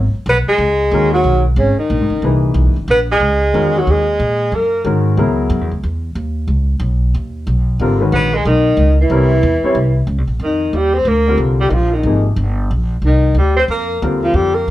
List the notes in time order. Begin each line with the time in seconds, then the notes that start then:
Already playing: G#1
0.14 muted upright bass stroke
0.26 B1 B3 B4
0.47 G#3 G#4, muted upright bass stroke
0.58 C#2
0.91 D#2 D#3 G#3 C#4 F#4 A#4
1.13 F#3 F#4
1.24 B1
1.56 G#1 C#3 C#4
1.77 D#3 D#4, muted upright bass stroke
1.90 A#1
2.01 G#1
2.10 F#1
2.22 C2 A#2 E3 D#4 G#4 B4
2.54 B1
2.65 G#1
2.76 F#1
2.88 A#1 B3 B4
3.11 G#3 G#4
3.20 C#2
3.54 E2 D#3 G#3 C#4 F#4 A#4
3.79 F#3 F#4
3.87 D#2 G#4
3.91 G#3
4.20 A#2
4.52 F#2 A#3 A#4
4.84 G#2 D#3 G#3 C#4 F#4 A#4
5.17 C#2 C#3 F#3 B3 E4 A#4
5.50 F#2
5.61 E2
5.71 C#2
5.84 E2
6.15 D#2
6.48 C#2
6.80 B1
7.14 D#2
7.47 B1
7.79 G#1 D3 G3 C4 F4 A#4
8.00 D#3 G#3 C#4 F#4 B4
8.12 A#1 B3 B4
8.34 G#3 G#4
8.45 B1 D#3 D#4
8.77 C#2
9.01 E3 E4
9.10 C2 G3 C4 C#4 E4 A#4
9.43 E2
9.63 G3 C4 C#4 E4 C#5, muted upright bass stroke
9.75 C2
10.07 C#2
10.18 C2
10.27 A#1
10.40 F2 D#3
10.45 D#4
10.73 D#2 G3
10.78 G4
10.94 C4
10.98 C5
11.05 D2 A#3 A#4
11.28 D3 G3 C4 F4 A#4
11.38 C2
11.61 G3 G4
11.70 A#1 D#3 D#4
11.74 F3 F4
11.92 D#3 D#4
12.03 G#1 C3 F3 A#3 D#4 G#4
12.36 G1
12.71 A#1
13.02 C2 D#4
13.06 D#3
13.35 D2 G3
13.39 G4
13.57 C4 C5
13.68 F2 A#3 A#4
14.02 D#2 D3 G3 C4 F4 A#4
14.23 F3 F4
14.34 F2 G3 G4
14.55 A#3 A#4